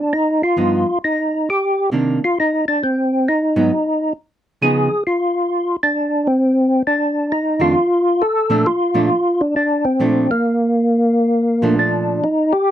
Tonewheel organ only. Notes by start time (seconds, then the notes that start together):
Already playing: D4
0.13 D#4
0.43 F4
1.04 D#4
1.50 G4
2.24 F4
2.40 D#4
2.68 D4
2.83 C4
3.29 D#4
4.63 G#4
5.07 F4
5.83 D4
6.27 C4
6.87 D4
7.32 D#4
7.61 F4
8.22 A4
8.66 F4
9.41 D4
9.56 D4
9.85 C4
10.31 A#3
11.79 D4
12.24 D#4
12.53 G4